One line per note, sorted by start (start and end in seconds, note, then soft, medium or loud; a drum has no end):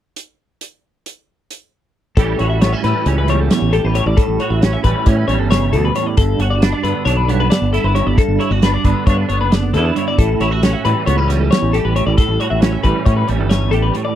0.16 closed hi-hat medium
0.61 closed hi-hat medium
1.06 closed hi-hat soft
1.51 closed hi-hat soft
2.17 2.34 A1 medium
2.17 3.93 A2 medium
2.17 2.84 E3 soft
2.17 2.84 G3 medium
2.17 2.62 C#4 medium
2.17 2.40 G4 medium
2.17 2.39 A4 medium
2.17 kick loud
2.17 closed hi-hat medium
2.39 2.73 A1 medium
2.39 3.73 F#4 medium
2.39 2.49 C#5 medium
2.39 closed hi-hat soft
2.49 2.61 E5 medium
2.61 2.73 B3 medium
2.61 2.73 C#5 medium
2.61 snare loud
2.61 closed hi-hat medium
2.73 3.06 C#4 soft
2.73 2.84 E5 medium
2.84 2.92 A2 medium
2.84 4.15 E3 medium
2.84 3.28 G3 medium
2.84 3.07 B4 medium
2.84 closed hi-hat medium
3.06 3.48 C#2 medium
3.06 4.15 C#4 medium
3.06 3.18 C#5 medium
3.06 closed hi-hat medium
3.18 3.29 B4 medium
3.27 3.95 E2 medium
3.27 4.85 G3 soft
3.27 3.40 C#5 medium
3.27 closed hi-hat medium
3.40 3.51 A4 medium
3.50 3.73 C#5 medium
3.50 snare medium
3.50 closed hi-hat medium
3.62 3.79 A1 medium
3.73 4.20 G4 medium
3.73 3.85 A4 medium
3.73 closed hi-hat medium
3.84 4.01 A1 medium
3.84 3.95 B4 medium
3.94 4.15 A2 medium
3.94 4.06 C#5 medium
3.94 closed hi-hat medium
4.06 4.15 A1 medium
4.06 4.18 D5 medium
4.17 5.28 A2 medium
4.17 4.39 A4 medium
4.17 kick medium
4.17 closed hi-hat medium
4.28 4.37 A1 medium
4.40 6.16 F#4 medium
4.40 4.50 C#5 medium
4.40 closed hi-hat soft
4.50 4.76 A1 medium
4.50 4.61 E5 medium
4.61 5.06 C#4 medium
4.61 4.73 C#5 medium
4.61 snare loud
4.61 closed hi-hat medium
4.73 4.83 E5 medium
4.84 4.93 A1 medium
4.84 6.15 E3 medium
4.84 5.29 G3 medium
4.84 5.06 B4 medium
4.84 kick medium
4.84 closed hi-hat medium
5.06 5.23 A2 medium
5.06 6.16 C#4 medium
5.06 5.17 C#5 medium
5.06 kick medium
5.06 closed hi-hat medium
5.17 5.27 B4 medium
5.28 5.39 A1 medium
5.28 6.17 E2 medium
5.28 6.85 G3 medium
5.28 5.39 C#5 medium
5.28 closed hi-hat medium
5.39 5.74 G1 medium
5.39 5.50 A4 medium
5.50 5.73 C#3 medium
5.50 5.73 C#5 medium
5.50 snare medium
5.50 closed hi-hat medium
5.73 5.90 D2 medium
5.73 5.94 B2 medium
5.73 5.84 A4 medium
5.73 closed hi-hat medium
5.85 5.95 B4 medium
5.95 6.17 A2 medium
5.95 6.07 C#5 medium
5.95 closed hi-hat medium
6.07 6.17 D5 medium
6.17 6.34 G1 medium
6.17 7.27 G2 medium
6.17 6.40 A4 medium
6.17 kick loud
6.17 closed hi-hat medium
6.39 6.73 G1 medium
6.39 7.73 F#4 medium
6.39 6.50 C#5 medium
6.39 closed hi-hat medium
6.50 6.62 D5 medium
6.62 7.06 D4 medium
6.62 6.72 B4 medium
6.62 snare loud
6.62 closed hi-hat medium
6.72 6.83 D5 medium
6.84 6.92 G2 medium
6.84 8.83 D3 soft
6.84 7.28 B3 soft
6.84 7.05 B4 medium
6.84 closed hi-hat medium
7.05 7.48 B1 medium
7.05 8.15 D4 medium
7.05 7.17 C#5 medium
7.05 closed hi-hat medium
7.17 7.28 B4 medium
7.28 7.93 G2 soft
7.28 8.15 B3 medium
7.28 7.40 C#5 medium
7.28 closed hi-hat medium
7.40 7.50 B4 medium
7.50 7.72 D5 medium
7.50 snare medium
7.50 closed hi-hat medium
7.62 7.79 G1 medium
7.73 8.18 E4 soft
7.73 7.84 A4 medium
7.73 snare soft
7.73 closed hi-hat medium
7.84 8.01 G1 medium
7.84 7.95 B4 medium
7.95 8.15 G2 medium
7.95 8.07 C#5 medium
7.95 closed hi-hat medium
8.07 8.15 G1 medium
8.07 8.18 D5 medium
8.17 9.28 G2 medium
8.17 8.40 A4 medium
8.17 kick loud
8.17 closed hi-hat medium
8.28 8.37 G1 medium
8.39 8.51 E4 medium
8.39 8.52 C#5 medium
8.39 closed hi-hat soft
8.51 8.76 G1 medium
8.51 9.73 F#4 soft
8.51 8.62 D5 medium
8.62 9.07 D4 medium
8.62 8.74 B4 medium
8.62 snare loud
8.62 closed hi-hat medium
8.74 8.85 D5 medium
8.84 8.93 G1 medium
8.84 10.18 D3 medium
8.84 9.29 B3 soft
8.84 9.06 B4 medium
8.84 kick medium
8.84 closed hi-hat medium
9.07 9.24 G2 medium
9.07 10.16 D4 medium
9.07 9.17 C#5 medium
9.07 kick medium
9.07 closed hi-hat medium
9.17 9.28 B4 medium
9.29 9.40 G1 medium
9.29 10.16 B3 soft
9.29 9.40 C#5 medium
9.29 closed hi-hat medium
9.40 9.75 F#1 medium
9.40 9.52 B4 medium
9.52 9.73 D5 medium
9.52 snare medium
9.52 closed hi-hat medium
9.74 9.90 E2 medium
9.74 10.41 E4 soft
9.74 9.85 A4 medium
9.74 snare soft
9.74 closed hi-hat medium
9.85 9.96 B4 medium
9.95 10.15 G2 medium
9.95 10.07 C#5 medium
9.95 closed hi-hat medium
10.08 10.18 D5 medium
10.18 10.35 A1 medium
10.18 11.29 A2 medium
10.18 10.40 A4 medium
10.18 kick medium
10.18 closed hi-hat medium
10.40 10.74 A1 medium
10.40 10.51 E4 medium
10.40 10.51 C#5 medium
10.40 snare soft
10.40 closed hi-hat soft
10.51 11.73 F#4 soft
10.51 10.63 E5 medium
10.63 11.06 C#4 medium
10.63 10.73 C#5 medium
10.63 snare loud
10.63 closed hi-hat medium
10.73 10.84 E5 medium
10.85 10.93 A2 medium
10.85 12.15 E3 medium
10.85 11.29 G3 soft
10.85 11.06 B4 medium
10.85 closed hi-hat medium
11.06 11.49 C#2 medium
11.06 11.18 B3 medium
11.06 11.17 C#5 medium
11.06 closed hi-hat medium
11.17 12.17 C#4 soft
11.17 11.28 B4 medium
11.28 11.95 E2 medium
11.28 12.84 G3 soft
11.28 11.39 C#5 medium
11.28 snare soft
11.28 closed hi-hat medium
11.39 11.50 A4 medium
11.51 11.73 C#5 medium
11.51 snare medium
11.51 closed hi-hat medium
11.62 11.79 A1 medium
11.73 12.21 G4 medium
11.73 11.84 A4 medium
11.73 closed hi-hat medium
11.85 12.01 A1 medium
11.85 11.95 B4 medium
11.96 12.17 A2 medium
11.96 12.06 C#5 medium
11.96 closed hi-hat medium
12.06 12.15 A1 medium
12.06 12.17 D5 medium
12.18 13.28 A2 medium
12.18 12.40 A4 medium
12.18 kick loud
12.18 closed hi-hat medium
12.29 12.37 A1 medium
12.40 13.73 F#4 medium
12.40 12.50 C#5 medium
12.40 closed hi-hat soft
12.50 12.76 A1 medium
12.50 12.61 E5 medium
12.61 13.05 C#4 medium
12.61 12.72 C#5 medium
12.61 snare loud
12.61 closed hi-hat medium
12.72 12.83 E5 medium
12.84 12.92 A1 medium
12.84 14.14 E3 medium
12.84 13.29 G3 soft
12.84 13.05 B4 medium
12.84 kick medium
12.84 closed hi-hat medium
13.06 13.23 A2 medium
13.06 14.14 C#4 medium
13.06 13.16 C#5 medium
13.06 kick medium
13.06 closed hi-hat medium
13.17 13.28 B4 medium
13.28 13.40 A1 medium
13.28 13.94 E2 medium
13.28 14.15 G3 soft
13.28 13.39 C#5 medium
13.28 closed hi-hat soft
13.39 13.74 G1 medium
13.39 13.50 A4 medium
13.50 13.72 C#5 medium
13.50 snare medium
13.50 closed hi-hat medium
13.71 13.90 A1 medium
13.71 14.15 G4 soft
13.71 13.83 A4 medium
13.71 closed hi-hat soft
13.82 13.94 B4 medium
13.94 14.15 A2 medium
13.94 14.04 C#5 medium
13.94 closed hi-hat medium
14.05 14.15 D5 medium